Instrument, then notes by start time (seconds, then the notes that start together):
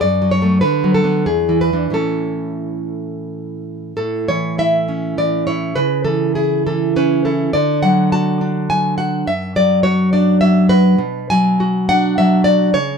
nylon-string guitar
0.01 F#2 D5
0.22 F#3
0.31 C#5
0.42 F#3 A3
0.61 D3 B4
0.84 F#3
0.94 A4
1.04 F#3 B3
1.26 E2 G#4
1.49 E3
1.61 B4
1.73 E3 D4
1.90 A2 E3 C#4 A4
3.97 A2 A4
4.28 E3 C#5
4.58 E4 E5
4.88 C#4
5.18 E3 D5
5.47 E4 C#5
5.76 C#3 B4
6.04 E3 A4
6.35 E4 G#4
6.67 E3 A4
6.96 C#4 B4
7.25 E4 A4
7.53 D3 D5
7.83 F#3 F#5
8.12 F#4 A5
8.41 D4
8.70 F#3 G#5
8.98 F#4 F#5
9.27 F#2 E5
9.56 F#3 D5
9.83 F#4 C#5
10.13 D4 D5
10.41 F#3 E5
10.69 F#4 B4
10.98 B2
11.30 F#3 G#5
11.60 F#4
11.89 D4 F#5
12.18 F#3 E5
12.44 F#4 D5
12.73 C#3 C#5